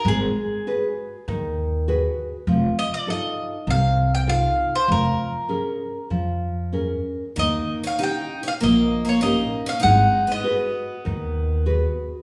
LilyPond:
<<
  \new Staff \with { instrumentName = "Mandolin" } { \time 4/4 \key aes \dorian \tempo 4 = 99 aes'2 r2 | r8 ees''16 d''16 ees''4 f''8. g''16 f''8. c''16 | bes'2 r2 | ees''8. f''16 g''8. f''16 ees''8. des''16 ees''8. f''16 |
ges''8. ees''2~ ees''8. r8 | }
  \new Staff \with { instrumentName = "Nylon-string guitar" } { \time 4/4 \key aes \dorian aes4 <ges' aes' ces''>4 ees4 <ges' aes' ces''>4 | f4 <ees' f' a'>4 c4 <ees' f' a'>4 | f4 <des' aes' bes'>4 f4 <des' aes' bes'>4 | ees4 <des' ees' g'>4 bes4 <des' ees' g'>4 |
aes4 <ges' aes' ces''>4 ees4 <ges' aes' ces''>4 | }
  \new Staff \with { instrumentName = "Twelve-string acoustic guitar" } { \time 4/4 \key aes \dorian r1 | r1 | r1 | bes8. des'16 ees'8. des'16 bes8. bes16 bes8. des'16 |
ees'8. ces'2~ ces'8. r8 | }
  \new Staff \with { instrumentName = "Upright bass" } { \clef bass \time 4/4 \key aes \dorian aes,,8 r4. ees,2 | f,,8 r4. c,2 | f,,8 r4. f,2 | ees,8 r4. bes,,2 |
aes,,8 r4. ees,2 | }
>>